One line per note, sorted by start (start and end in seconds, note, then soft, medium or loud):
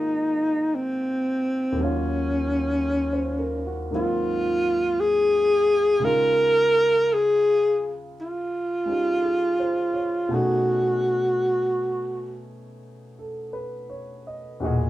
0.00 1.78 G#2 soft
0.00 1.74 D#3 soft
0.00 1.79 G#3 soft
0.00 1.80 A#3 soft
0.00 1.82 C4 soft
0.00 0.76 D#4 medium
0.00 1.80 F4 soft
0.00 1.83 G4 medium
0.75 1.85 C4 medium
1.72 3.89 D#2 soft
1.72 3.90 D#3 soft
1.78 3.91 F#3 soft
1.78 3.93 C#4 soft
1.83 3.76 C#4 medium
1.83 3.93 F4 medium
2.85 3.35 C#5 soft
3.13 3.58 C5 soft
3.39 3.72 A#4 soft
3.67 4.03 F#4 soft
3.91 6.04 G#2 soft
3.91 6.04 D#3 soft
3.91 6.05 F#3 soft
3.91 6.05 A#3 soft
3.91 6.06 C4 soft
3.95 6.03 F4 soft
3.95 5.02 F4 medium
5.00 6.06 G#4 medium
5.99 10.28 C#3 medium
5.99 8.84 G#3 medium
5.99 8.88 D#4 soft
6.05 10.31 F4 medium
6.05 7.15 A#4 medium
7.14 8.01 G#4 medium
8.21 10.36 F4 medium
8.86 10.29 G#3 soft
8.86 10.30 C#4 soft
8.86 10.30 D#4 soft
8.86 9.43 G4 soft
9.22 9.90 G#4 soft
9.60 10.15 C5 soft
9.93 10.50 C#5 soft
10.29 14.59 B2 soft
10.29 14.60 A3 soft
10.29 14.60 C#4 soft
10.29 14.61 D#4 soft
10.34 12.46 F#4 medium
10.34 14.61 G#4 medium
13.19 13.74 A4 soft
13.53 14.21 B4 soft
13.90 14.45 C#5 soft
14.27 14.62 D#5 soft
14.60 14.90 E2 soft
14.60 14.90 A#2 medium
14.60 14.90 B2 soft
14.60 14.90 F#4 medium
14.60 14.90 D#5 soft
14.65 14.90 G#4 medium